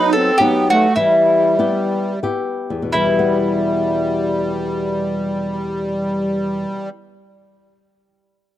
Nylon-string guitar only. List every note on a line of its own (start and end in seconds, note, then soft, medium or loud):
0.00 0.30 F#3 medium
0.00 0.30 B3 medium
0.00 0.31 D#4 medium
0.40 0.85 F#3 medium
0.40 0.86 B3 medium
0.40 0.86 D#4 medium
0.97 1.55 E3 medium
1.59 2.11 B3 medium
1.59 2.11 E4 medium
1.59 2.11 G4 medium
2.23 2.80 B3 medium
2.23 2.81 E4 soft
2.23 2.81 G4 medium
2.70 6.64 E2 soft
2.82 6.77 B2 soft
2.95 6.89 E3 medium
3.06 7.00 G3 soft
3.19 7.13 B3 medium